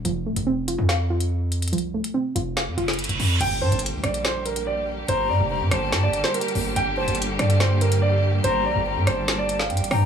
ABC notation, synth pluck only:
X:1
M:4/4
L:1/8
Q:1/4=143
K:Gm
V:1 name="Synth pluck"
F, A, C F f F3 | F, A, C F f F3 | z8 | z8 |
z8 | z8 |]